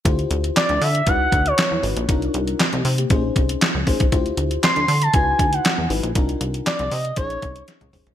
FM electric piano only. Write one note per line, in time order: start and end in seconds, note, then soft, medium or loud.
0.05 0.84 E4 medium
0.05 0.84 F4 medium
0.05 0.84 G4 medium
0.05 0.84 C5 medium
1.06 1.68 D#4 medium
1.06 1.68 E4 medium
1.06 1.69 F#4 medium
1.06 1.69 B4 medium
1.82 2.03 D#4 medium
1.82 2.03 E4 medium
1.82 2.03 F#4 medium
1.82 2.03 B4 medium
2.08 2.59 D4 medium
2.08 2.59 D#4 medium
2.08 2.60 F4 medium
2.08 2.60 A#4 loud
2.73 2.85 G4 medium
2.73 2.84 D#5 medium
2.85 2.98 D#4 medium
2.85 2.98 C5 medium
2.99 3.23 A#3 medium
2.99 3.23 G4 medium
3.10 3.72 C#4 loud
3.10 3.72 D#4 medium
3.10 3.72 G#4 medium
3.10 3.72 C5 loud
3.86 4.06 C#4 medium
3.86 4.07 D#4 medium
3.86 4.07 G#4 medium
3.86 4.07 C5 loud
4.12 4.91 E4 medium
4.12 4.91 F4 medium
4.12 4.91 G4 medium
4.12 4.91 C5 loud
5.13 5.75 D#4 medium
5.13 5.75 E4 medium
5.13 5.75 F#4 medium
5.13 5.76 B4 medium
5.90 6.10 D#4 medium
5.90 6.10 E4 medium
5.90 6.10 F#4 medium
5.90 6.10 B4 medium
6.15 6.94 D4 medium
6.15 6.94 D#4 medium
6.15 6.94 F4 medium
6.15 6.94 A#4 loud
7.17 7.78 C#4 medium
7.17 7.79 D#4 medium
7.17 7.79 G#4 medium
7.17 7.79 C#5 medium
7.93 8.13 C#4 medium
7.93 8.13 D#4 medium
7.93 8.13 G#4 medium
7.93 8.14 C5 loud